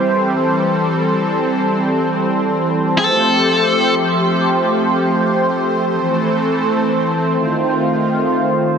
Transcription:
0.00 2.94 E3 medium
0.00 2.94 G3 medium
0.00 5.87 C4 medium
0.00 2.94 C5 medium
0.06 2.95 A4 medium
2.98 5.88 F3 medium
2.98 8.78 A3 medium
2.98 5.88 G4 medium
2.98 3.93 A4 loud
2.98 8.78 C5 medium
5.91 7.36 E3 medium
5.91 8.78 C4 medium
5.91 7.36 A4 medium
7.37 8.78 D#3 medium
7.37 8.78 F4 medium

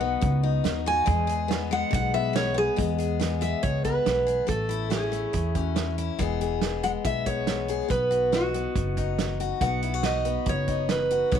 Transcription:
0.00 0.16 B1 medium
0.00 0.17 D#3 medium
0.00 1.06 B3 medium
0.00 0.42 D#4 medium
0.00 0.85 F#4 medium
0.00 0.41 F#5 loud
0.21 0.59 C#2 medium
0.21 0.60 F#2 medium
0.21 kick loud
0.21 closed hi-hat medium
0.43 1.05 D#4 medium
0.64 1.01 D#2 medium
0.64 1.03 D#3 medium
0.64 snare loud
0.64 closed hi-hat medium
0.86 1.05 F#4 medium
0.86 1.70 G#5 loud
1.06 1.45 E2 medium
1.06 1.82 E2 loud
1.06 1.70 G#3 medium
1.06 kick loud
1.06 closed hi-hat medium
1.27 2.75 G#4 medium
1.27 closed hi-hat medium
1.48 1.87 E3 medium
1.48 2.12 B3 medium
1.48 snare loud
1.48 closed hi-hat medium
1.71 2.75 G#3 medium
1.71 1.93 F#5 loud
1.91 2.68 B1 medium
1.91 2.30 B2 medium
1.91 2.14 F#5 medium
1.91 kick loud
1.91 closed hi-hat medium
2.14 2.53 B3 medium
2.14 2.35 E5 medium
2.33 2.73 E3 medium
2.33 2.56 C#5 loud
2.33 snare loud
2.33 closed hi-hat medium
2.54 3.19 B3 medium
2.54 2.78 G#4 loud
2.76 3.16 E2 medium
2.76 3.53 E2 medium
2.76 3.40 G#3 medium
2.76 kick loud
2.76 closed hi-hat medium
2.98 4.25 G#4 medium
2.98 closed hi-hat soft
3.20 3.59 E3 medium
3.20 3.84 B3 soft
3.20 snare medium
3.20 closed hi-hat medium
3.41 4.46 G#3 medium
3.41 3.64 E5 medium
3.41 closed hi-hat medium
3.63 4.00 C#2 medium
3.63 4.02 B2 medium
3.63 3.83 C#5 medium
3.63 kick medium
3.63 closed hi-hat medium
3.85 4.49 B3 medium
3.85 4.48 B4 medium
3.85 kick medium
3.85 closed hi-hat medium
4.06 4.42 B1 medium
4.06 4.44 E3 medium
4.06 snare loud
4.06 closed hi-hat medium
4.27 4.46 G#4 medium
4.27 closed hi-hat medium
4.47 5.23 A1 medium
4.47 4.86 A2 medium
4.47 5.10 A3 medium
4.47 4.88 A4 medium
4.47 kick loud
4.47 closed hi-hat medium
4.69 5.97 E4 medium
4.69 closed hi-hat medium
4.90 5.29 E3 medium
4.90 5.54 C#4 medium
4.90 5.63 G#4 medium
4.90 snare loud
4.90 closed hi-hat medium
5.12 6.17 A3 medium
5.12 closed hi-hat medium
5.33 5.72 E2 medium
5.33 6.09 E2 medium
5.33 kick loud
5.33 closed hi-hat medium
5.55 6.17 C#4 medium
5.55 kick medium
5.55 closed hi-hat medium
5.63 5.94 F#4 medium
5.76 6.15 E3 medium
5.76 snare loud
5.76 closed hi-hat medium
5.98 6.19 E4 medium
5.98 closed hi-hat medium
6.19 6.94 E1 medium
6.19 6.58 E2 medium
6.19 6.62 E3 medium
6.19 6.83 G#3 medium
6.19 6.63 B3 medium
6.19 6.40 G#4 medium
6.19 kick loud
6.19 closed hi-hat medium
6.41 7.68 G#4 medium
6.41 closed hi-hat medium
6.62 7.01 E3 medium
6.62 7.26 B3 medium
6.62 snare loud
6.62 closed hi-hat medium
6.83 7.88 G#3 medium
6.83 6.89 F#5 loud
6.83 closed hi-hat medium
7.04 7.80 B1 medium
7.04 7.44 B2 medium
7.04 7.27 E5 loud
7.04 kick medium
7.04 closed hi-hat medium
7.26 7.90 B3 medium
7.26 7.87 C#5 medium
7.26 kick medium
7.26 closed hi-hat medium
7.47 7.86 E3 medium
7.47 snare loud
7.47 closed hi-hat medium
7.68 7.88 G#4 medium
7.68 closed hi-hat medium
7.88 8.65 B1 medium
7.88 8.28 B2 medium
7.88 8.54 B3 medium
7.88 8.35 B4 medium
7.88 kick loud
7.88 closed hi-hat medium
8.11 9.40 F#4 medium
8.11 closed hi-hat soft
8.32 8.71 D#3 medium
8.32 8.97 D#4 medium
8.32 9.37 F#4 medium
8.32 snare loud
8.32 closed hi-hat medium
8.54 9.62 B3 medium
8.54 closed hi-hat medium
8.75 9.51 F#1 medium
8.75 9.14 F#2 medium
8.75 kick loud
8.75 closed hi-hat medium
8.97 9.86 D#4 medium
8.97 kick medium
8.97 closed hi-hat medium
9.19 9.57 D#3 medium
9.19 snare loud
9.19 closed hi-hat medium
9.40 9.82 F#4 medium
9.40 closed hi-hat medium
9.61 10.36 B1 medium
9.61 10.00 B2 medium
9.61 10.25 B3 medium
9.61 10.03 F#5 medium
9.61 kick loud
9.61 closed hi-hat medium
9.82 9.94 E4 medium
9.82 closed hi-hat medium
9.94 11.10 F#4 soft
10.03 10.42 D#3 medium
10.03 10.67 D#4 medium
10.03 10.48 D#5 medium
10.03 snare loud
10.03 closed hi-hat medium
10.25 11.32 B3 medium
10.25 closed hi-hat medium
10.46 11.22 F#1 medium
10.46 10.85 F#2 medium
10.46 10.88 C#5 medium
10.46 kick loud
10.46 closed hi-hat medium
10.68 11.30 D#4 medium
10.68 kick medium
10.68 closed hi-hat medium
10.89 11.28 D#3 medium
10.89 11.34 B4 medium
10.89 snare loud
10.89 closed hi-hat medium
11.10 11.30 F#4 medium
11.10 closed hi-hat medium
11.31 11.40 B1 medium
11.31 11.40 B2 medium
11.31 11.40 B3 medium
11.31 11.40 D#5 medium
11.31 kick loud
11.31 closed hi-hat medium

